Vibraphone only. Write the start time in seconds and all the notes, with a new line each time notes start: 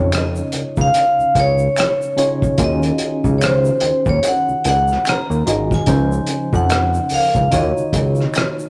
0.16 D#5
0.81 F5
1.40 C#5
2.64 D#5
3.38 C#5
3.45 C5
4.09 C#5
4.28 F#5
4.69 F#5
5.10 A#5
5.74 G#5
6.56 F#5
7.14 F5
7.55 D#5